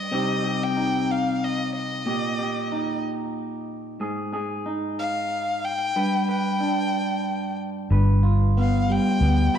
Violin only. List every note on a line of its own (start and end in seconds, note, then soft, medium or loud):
0.00 0.65 D#5 medium
0.64 1.13 G5 medium
1.11 1.46 F5 medium
1.44 1.75 D#5 medium
1.77 3.01 D#5 medium
4.99 5.66 F5 medium
5.65 6.29 G5 medium
6.31 7.56 G5 medium
8.59 8.93 F5 medium
8.91 9.57 G5 medium